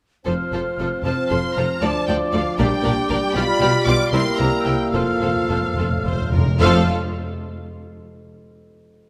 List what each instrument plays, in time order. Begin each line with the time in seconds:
0.25 double bass section F1, cello section F2, viola section F3 F4, bassoon F3, french horn section F3 C4, violin section A4 C5, clarinet C5, flute section F6
0.52 double bass section F1, cello section F2, viola section F3 F4, violin section A4 C5
0.79 double bass section F1, cello section F2, viola section F3 F4, violin section A4 C5
1.04 double bass section F1, cello section F2, viola section F3 F4, bassoon F3, violin section A4 C5 A5, clarinet C5, flute section F6
1.30 double bass section F1, cello section F2, viola section F3 F4, violin section A4 C5 C6
1.56 double bass section F1, cello section F2, viola section F3 F4, violin section A4 C5 A#5
1.81 double bass section D2, cello section D2, bassoon F3, viola section F3 F4, french horn section D4, violin section A4 D5 A5, clarinet D5, flute section D6
2.07 double bass section D2, cello section D2, viola section F3 F4, violin section A4 D5 G5
2.32 double bass section D2, cello section D2, viola section F3 F4, violin section A4 D5 F5
2.58 double bass section A#1, cello section A#2, french horn section G3, bassoon G3, viola section G3 D4, violin section A#4 D5 G5, clarinet D5, flute section D6
2.83 double bass section A#1, cello section A#2, viola section G3 D4, violin section A#4 D5
3.09 double bass section A#1, cello section A#2, viola section G3 D4, violin section A#4 D5
3.34 double bass section B1, cello section B2, bassoon G3, viola section G3 F4, french horn section F4, violin section G4 D5 B5, clarinet D5, flute section F6
3.61 double bass section B1, cello section B2, viola section G3 F4, violin section G4 D5
3.85 double bass section B1, cello section B2, viola section G3 F4, violin section G4 D5 D6
4.11 double bass section C2, cello section C3, bassoon G3, viola section G3 E4, french horn section A#3 E4, violin section A#4 C5 C6, clarinet A#4, flute section E6
4.38 double bass section C2, cello section C3, viola section G3 E4, violin section A#4 C5 A#5
4.65 double bass section C2, cello section C3, viola section G3 E4, violin section A#4 C5 G5
4.92 double bass section F1, cello section F2, timpani F2, bassoon F3, viola section F3 F4, french horn section F4, clarinet A4, violin section A4 C5 F5, flute section F6
5.00 timpani F2
5.08 timpani F2
5.17 double bass section F1, timpani F2, cello section F2, viola section F3 F4
5.21 violin section A4 C5
5.26 timpani F2
5.33 timpani F2
5.41 timpani F2
5.48 double bass section F1, cello section F2, timpani F2, viola section F3 F4, violin section A4 C5
5.57 timpani F2
5.65 timpani F2
5.74 double bass section F1, timpani F2, cello section F2, viola section F3 F4, french horn section A3
5.78 timpani F2, violin section A4
5.90 timpani F2
5.97 timpani F2
6.04 double bass section F1, cello section F2, timpani F2, viola section F3 F4, violin section C5
6.14 timpani F2
6.22 timpani F2
6.29 double bass section F1, timpani F2, cello section F2, viola section F3 F4, violin section A#4
6.38 timpani F2
6.45 timpani F2
6.59 double bass section F1, timpani F2, cello section F2, viola section F3 F4, bassoon F3, french horn section A3 F4, clarinet A4, violin section A4 C5 F5, flute section F6